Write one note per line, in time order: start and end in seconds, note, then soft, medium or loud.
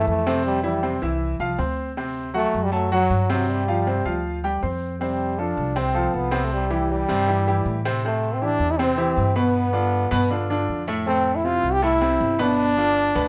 0.00 0.19 E3 medium
0.00 0.19 E4 medium
0.00 0.20 E5 medium
0.07 0.96 F2 medium
0.07 0.43 A3 medium
0.27 0.57 C3 loud
0.27 0.58 C4 medium
0.27 0.58 C5 medium
0.46 0.63 G3 medium
0.63 0.79 E3 medium
0.63 0.99 G3 medium
0.63 0.79 E4 medium
0.63 0.80 E5 medium
0.83 0.98 C3 medium
0.83 0.98 C4 medium
0.83 0.99 C5 medium
1.02 1.37 C2 medium
1.02 1.33 E3 medium
1.02 1.33 E4 medium
1.02 1.34 E5 medium
1.39 1.57 C2 medium
1.39 1.55 F3 medium
1.39 1.55 F4 medium
1.39 1.56 F5 medium
1.58 2.47 D2 medium
1.58 1.90 C4 medium
1.58 1.90 C5 medium
1.58 1.90 C6 medium
1.97 2.28 C3 medium
1.97 2.28 C4 medium
1.97 2.29 C5 medium
2.34 2.65 F#3 medium
2.34 2.65 A3 loud
2.34 2.66 F#4 medium
2.34 2.66 F#5 medium
2.54 3.07 F#2 medium
2.64 2.73 G3 loud
2.72 2.91 F#3 medium
2.72 2.88 A3 medium
2.72 2.88 A4 medium
2.72 2.88 A5 medium
2.92 3.23 F#3 medium
2.92 3.28 F#3 loud
2.92 3.23 F#4 medium
2.92 3.23 F#5 medium
3.10 3.99 G2 medium
3.29 3.61 C3 loud
3.29 3.51 F#3 medium
3.29 3.61 C4 medium
3.29 3.61 C5 medium
3.49 4.25 G3 medium
3.68 3.83 F3 medium
3.68 3.83 F4 medium
3.68 3.84 F5 medium
3.87 4.02 C3 medium
3.87 4.02 C4 medium
3.87 4.03 C5 medium
4.05 4.58 D2 medium
4.05 4.36 F3 medium
4.05 4.37 F4 medium
4.05 4.37 F5 medium
4.44 4.59 G3 medium
4.44 4.59 G4 medium
4.44 4.60 G5 medium
4.63 5.51 F2 medium
4.63 4.94 C4 medium
4.63 4.94 C5 medium
4.63 4.94 C6 medium
5.01 5.32 C3 medium
5.01 5.41 G3 medium
5.01 5.32 C4 medium
5.01 5.32 C5 medium
5.38 5.69 F3 medium
5.38 5.79 D4 medium
5.38 5.69 F4 medium
5.38 5.70 A4 medium
5.57 6.10 C2 medium
5.76 5.91 C3 medium
5.76 5.91 C4 medium
5.76 6.17 C4 medium
5.76 5.92 C5 medium
5.94 6.26 F3 medium
5.94 6.26 F4 medium
5.94 6.26 A4 medium
6.14 7.03 C2 medium
6.14 6.46 B3 medium
6.31 6.63 C3 loud
6.31 6.63 C4 loud
6.31 6.63 C5 medium
6.45 6.53 A3 medium
6.53 6.88 G3 medium
6.70 7.02 E3 medium
6.70 7.02 E4 medium
6.70 7.02 G4 medium
6.92 7.82 G3 loud
7.08 7.62 G2 medium
7.08 7.24 C3 medium
7.08 7.25 C4 loud
7.08 7.25 C5 medium
7.28 7.43 E3 medium
7.28 7.43 E4 medium
7.28 7.44 G4 medium
7.47 7.78 E3 medium
7.47 7.78 E4 medium
7.47 7.79 G4 medium
7.66 8.54 A2 medium
7.85 8.01 C3 loud
7.85 8.01 C4 medium
7.85 8.01 C5 medium
8.05 8.35 C3 medium
8.05 8.36 A3 medium
8.05 8.36 C4 medium
8.05 8.36 C5 medium
8.34 8.45 C4 medium
8.42 8.73 E3 medium
8.42 8.73 D4 loud
8.42 8.73 E4 medium
8.42 8.73 G4 medium
8.60 9.13 E2 medium
8.71 8.81 E4 loud
8.79 8.95 C3 medium
8.79 9.36 C4 medium
8.79 8.95 C4 medium
8.79 8.95 C5 medium
8.97 9.29 E3 medium
8.97 9.29 E4 medium
8.97 9.29 G4 medium
9.17 10.06 G2 medium
9.36 9.67 B2 medium
9.36 9.67 B3 medium
9.36 10.57 B3 loud
9.36 9.67 B4 medium
9.73 10.04 D3 medium
9.73 10.05 D4 medium
9.73 10.05 F4 medium
10.11 10.65 G2 medium
10.11 10.27 B2 loud
10.11 10.27 B3 loud
10.11 10.27 B4 loud
10.30 10.46 D3 medium
10.30 10.46 D4 medium
10.30 10.46 F4 medium
10.50 10.81 D3 medium
10.50 10.81 D4 medium
10.50 10.81 F4 medium
10.69 11.58 F2 medium
10.88 11.03 A2 medium
10.88 11.04 A3 loud
10.88 11.04 A4 medium
11.07 11.38 A2 medium
11.07 11.38 A3 medium
11.07 11.37 C4 loud
11.07 11.38 A4 medium
11.36 11.46 E4 medium
11.44 11.75 C3 medium
11.44 11.76 C4 medium
11.44 11.76 E4 medium
11.44 11.74 F4 loud
11.63 12.16 C2 medium
11.73 11.82 G4 loud
11.82 11.98 A2 medium
11.82 11.98 A3 medium
11.82 12.43 E4 loud
11.82 11.98 A4 medium
12.01 12.33 C3 medium
12.01 12.32 C4 medium
12.01 12.33 E4 medium
12.21 13.09 G1 medium
12.39 12.70 B2 medium
12.39 12.70 B3 loud
12.39 13.28 D4 loud
12.39 12.70 B4 loud
12.77 13.09 D3 medium
12.77 13.09 D4 medium
12.77 13.09 F4 medium
13.15 13.28 D2 medium
13.15 13.28 B2 medium
13.15 13.28 B3 loud
13.15 13.28 B4 medium